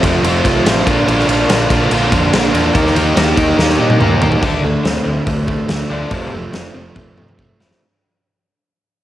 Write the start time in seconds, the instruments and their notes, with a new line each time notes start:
0.03 fingered electric bass F1, overdriven electric guitar F2 C3 F3 A3 C4 F4, kick, ride
0.22 fingered electric bass F1, overdriven electric guitar F2 C3 F3 A3 C4 F4, ride
0.45 fingered electric bass C2, overdriven electric guitar F2 C3 F3 A3 C4 F4, kick, ride
0.64 fingered electric bass A1, overdriven electric guitar F2 C3 F3 A3 C4 F4, snare, ride
0.86 fingered electric bass A#1, overdriven electric guitar A#2 D3 A#3 D4 F4, kick, ride
1.07 fingered electric bass A#1, overdriven electric guitar A#2 D3 A#3 D4 F4, ride
1.19 snare
1.27 fingered electric bass A#1, overdriven electric guitar A#2 D3 A#3 D4 F4, ride
1.49 fingered electric bass A#1, overdriven electric guitar A#2 D3 A#3 D4 F4, snare, ride
1.70 fingered electric bass A#1, overdriven electric guitar A#2 D3 A#3 D4 F4, kick, ride
1.90 fingered electric bass A#1, overdriven electric guitar A#2 D3 A#3 D4 F4, ride
2.12 fingered electric bass F2, overdriven electric guitar A#2 D3 A#3 D4 F4, kick, ride
2.32 fingered electric bass A#1, overdriven electric guitar A#2 D3 A#3 D4 F4, snare, ride
2.53 fingered electric bass E2, overdriven electric guitar A#2 D3 A#3 D4 F4, ride
2.74 fingered electric bass D#2, overdriven electric guitar D#3 A#3 D#4 G4, kick, ride
2.86 snare
2.95 fingered electric bass D#2, overdriven electric guitar D#3 A#3 D#4 G4, ride
3.16 fingered electric bass D#2, overdriven electric guitar D#3 A#3 D#4 G4, snare, ride
3.36 fingered electric bass D#2, overdriven electric guitar D#3 A#3 D#4 G4, kick, ride
3.57 fingered electric bass D#2, overdriven electric guitar D#3 A#3 D#4 G4, snare
3.69 snare
3.79 fingered electric bass A#2, overdriven electric guitar D#3 A#3 D#4 G4
3.90 high tom
3.99 fingered electric bass D#2, overdriven electric guitar D#3 A#3 D#4 G4, mid tom
4.20 fingered electric bass D#2, overdriven electric guitar D#3 A#3 D#4 G4, floor tom
4.32 floor tom
4.41 fingered electric bass D2, overdriven electric guitar D3 A3 D4, kick, crash
4.62 fingered electric bass D2, overdriven electric guitar D3 A3
4.83 fingered electric bass D2, overdriven electric guitar D3 A3 C4, snare, open hi-hat
5.05 fingered electric bass D2, overdriven electric guitar D3 A3
5.26 fingered electric bass D2, overdriven electric guitar D3 A3, kick, open hi-hat
5.47 overdriven electric guitar D3 A3, kick
5.69 fingered electric bass D2, overdriven electric guitar D3 A3, snare, open hi-hat
5.90 fingered electric bass D2, overdriven electric guitar D3 A3 D4 F4
6.10 fingered electric bass F1, overdriven electric guitar F2 C3 F3, kick, open hi-hat
6.32 fingered electric bass F1, overdriven electric guitar F2 C3 A3
6.52 fingered electric bass F1, overdriven electric guitar F2 C3 C4, snare, open hi-hat
6.74 fingered electric bass F1, overdriven electric guitar F2 C3 F3
6.95 fingered electric bass F1, overdriven electric guitar F2 C3 A3, kick, high tom
7.16 overdriven electric guitar F2 C3 F3, mid tom
7.29 mid tom
7.38 fingered electric bass F1, overdriven electric guitar F2 C3 A3, kick
7.59 fingered electric bass F1, overdriven electric guitar F2 C3 F3 E4, snare
7.71 snare